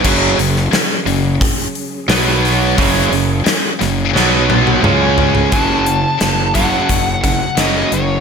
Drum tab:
CC |x---------------|----------------|----------------|
HH |--o-o-o-o-o-o-o-|o-o-o-o---------|x-x-x-x-x-x-x-x-|
SD |---oo-------o---|----o-o-o-------|----o-------o---|
T1 |----------------|----------oo----|----------------|
T2 |----------------|------------o---|----------------|
FT |----------------|--------------oo|----------------|
BD |o-------o-------|o---------------|o-----o-o-o-----|